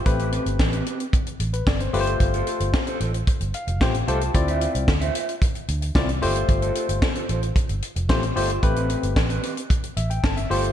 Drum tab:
HH |xxxx-xxxxxxx-xox|xxxx-xxxxxxx-xxx|xxxx-xxxxxxx-xox|xxxx-xxxxxxx-xox|
SD |----o-------o---|----o-------o---|----o-------o---|----o-------o---|
BD |o---o---o---o---|o---o---o---o---|o---o---o---o---|o---o---o---o---|

HH |xxxx-xxxxxxx-xox|
SD |----o-------o---|
BD |o---o---o---o---|